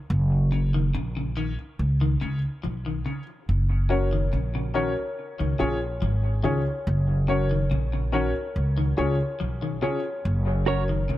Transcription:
0.10 upright bass F#1
0.51 clean electric guitar C#3, upright piano C#4 F#4 A#4 C#5
0.74 clean electric guitar D#3
0.95 upright bass A#1, clean electric guitar C#3
1.17 clean electric guitar C#3
1.36 clean electric guitar D#3, upright piano C#4 F#4 A#4 C#5
1.79 upright bass C#2
2.01 clean electric guitar D#3
2.20 upright bass C#2, clean electric guitar C#3, upright piano C#4 F4 G#4 C#5
2.63 upright bass B1, clean electric guitar F3
2.86 clean electric guitar D#3
3.05 clean electric guitar C#3, upright piano C#4 F4 G#4 C#5
3.49 upright bass F#1
3.89 clean electric guitar C#3, upright piano C#4 F#4 A#4 C#5
4.13 clean electric guitar D#3
4.33 upright bass A#1, clean electric guitar C#3
4.55 clean electric guitar C#3
4.74 clean electric guitar D#3, upright piano C#4 F#4 A#4 C#5
5.39 upright bass C#2, clean electric guitar D#3
5.59 upright bass A#1, clean electric guitar C#3, upright piano C#4 F4 G#4 C#5
6.02 upright bass G#1, clean electric guitar F3
6.43 upright bass C#2, clean electric guitar D#3, upright piano C#4 F4 G#4 C#5
6.87 upright bass F#1
7.28 clean electric guitar C#3, upright piano C#4 F#4 A#4 C#5
7.51 clean electric guitar D#3
7.71 upright bass A#1, clean electric guitar C#3
7.93 clean electric guitar C#3
8.12 clean electric guitar D#3, upright piano C#4 F#4 A#4 C#5
8.56 upright bass C#2
8.78 clean electric guitar D#3
8.97 upright bass C#2, clean electric guitar C#3, upright piano C#4 F4 G#4 C#5
9.40 upright bass B1, clean electric guitar F3
9.62 clean electric guitar D#3
9.82 clean electric guitar C#3, upright piano C#4 F4 G#4 C#5
10.25 upright bass F#1
10.66 clean electric guitar C#3 F#4 A#4 C#5, upright piano C#4 F#4 A#4 C#5
10.89 clean electric guitar D#3
11.09 upright bass A#1, clean electric guitar C#3

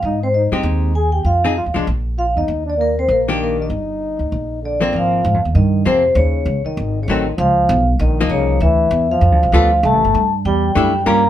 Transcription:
0.02 upright bass G#2, trombone D#4, vibraphone D#5
0.23 trombone C4, vibraphone C5
0.34 trombone D#4, vibraphone D#5
0.52 upright bass G2, hollow-body jazz guitar G#3 C4 D#4 G4
0.63 upright bass D#2
0.95 trombone G#4, vibraphone G#5
1.12 trombone G4, vibraphone G5
1.25 upright bass F2, trombone F4, vibraphone F5
1.45 hollow-body jazz guitar F3 C4 D#4 G#4, trombone D#4, vibraphone D#5
1.57 trombone F4, vibraphone F5
1.66 upright bass D#2
1.74 upright bass B1, hollow-body jazz guitar F3 G#3 D4
1.87 upright bass A#1
2.18 trombone F4, vibraphone F5
2.36 upright bass E2, trombone D#4, vibraphone D#5
2.48 upright bass D#2
2.66 trombone D4, vibraphone D5
2.78 trombone A#3, vibraphone A#4
2.99 trombone C4, vibraphone C5
3.08 upright bass A#1, trombone A#3, vibraphone A#4
3.28 hollow-body jazz guitar D#3 A#3 D4 G4
3.42 trombone A#3, vibraphone A#4
3.60 trombone D#4, vibraphone D#5
3.70 upright bass G1
4.19 upright bass D2
4.32 upright bass A#1
4.63 trombone D3, vibraphone D5
4.81 hollow-body jazz guitar F3 A#3 C4
4.93 upright bass G#1, trombone F3, vibraphone F5
5.25 upright bass G#2
5.34 upright bass F2
5.45 upright bass D#2
5.54 upright bass G2, trombone D#3, vibraphone D#5
5.85 upright bass F2, trombone C3, hollow-body jazz guitar F3 A#3 C4, vibraphone C5
6.15 upright bass D#2, trombone C#3, vibraphone C#5
6.46 upright bass C#2
6.65 trombone D#3, vibraphone D#5, muted upright bass stroke
6.77 upright bass G#1
7.02 trombone C#3, vibraphone C#5
7.08 upright bass A1, trombone D#3, hollow-body jazz guitar F#3 A3 C4, vibraphone D#5
7.37 upright bass C#2, trombone F3, vibraphone F5
7.69 upright bass B1
7.99 upright bass A#1, trombone D#3, vibraphone D#5
8.21 hollow-body jazz guitar F3 A#3 D#4
8.29 upright bass C2, trombone C#3, vibraphone C#5
8.60 upright bass D2, trombone E3, vibraphone E5
8.91 upright bass E2
9.11 trombone F3, vibraphone F5
9.21 upright bass F2
9.32 upright bass D2
9.43 upright bass B1
9.52 upright bass D2, trombone F3, hollow-body jazz guitar G3 B3 F4 A4, vibraphone F5
9.83 upright bass C2, trombone A3, vibraphone A5
9.93 upright bass A1
10.05 upright bass G1
10.14 upright bass G2
10.45 upright bass E2, trombone G3, vibraphone G5
10.75 upright bass F#2, trombone G3, hollow-body jazz guitar A3 D4 E4, vibraphone G5
11.06 upright bass G2, hollow-body jazz guitar G3 C#4 F4 A#4, trombone A#3, vibraphone A#5

